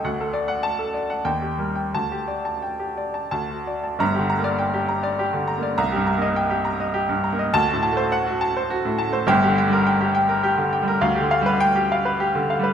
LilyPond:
<<
  \new Staff \with { instrumentName = "Grand piano" } { \time 3/4 \key g \minor \tempo 4 = 102 << { r4 a''8 r8 g''8 r8 | a''8 r4. a''8 r8 | bes''8 r2 r8 | bes''8 r2 r8 |
a''8 r2 r8 | g''8 r2 r8 | \key g \phrygian r4 g''8 r4. | } \\ { fis''16 a'16 d''16 fis''8 a'16 d''16 fis''16 r16 g'16 bes'16 g''16 | r16 g'16 d''16 a''16 g''16 g'16 d''16 a''16 r16 fis'16 d''16 a''16 | r16 g'16 bes''16 d''16 g''16 g'16 bes''16 d''16 g'16 d16 bes''16 d''16 | r16 g'16 bes''16 ees''16 g''16 g'16 bes''16 ees''16 g'16 g,16 bes''16 ees''16 |
r16 fis'16 a''16 c''16 fis''16 fis'16 a''16 c''16 fis'16 a,16 a''16 c''16 | r16 g'16 g''16 bes'16 g''16 g'16 g''16 bes'16 g'16 d16 g''16 bes'16 | f''16 g'16 f''16 b'8 g'16 f''16 b'16 g'16 d16 f''16 b'16 | } >> }
  \new Staff \with { instrumentName = "Grand piano" } { \clef bass \time 3/4 \key g \minor d,2 ees,8 g8 | d,2 d,4 | \tuplet 3/2 { <g,, g,>8 d8 bes8 } r4 \tuplet 3/2 { r4 bes8 } | \tuplet 3/2 { c,8 g,8 bes8 } r4 \tuplet 3/2 { r4 bes8 } |
\tuplet 3/2 { d,8 a,8 a8 } r4 \tuplet 3/2 { r4 a8 } | \tuplet 3/2 { <g,, g,>8 d8 g8 } r4 \tuplet 3/2 { r4 g8 } | \key g \phrygian \tuplet 3/2 { d,8 d8 g8 } r4 \tuplet 3/2 { r4 g8 } | }
>>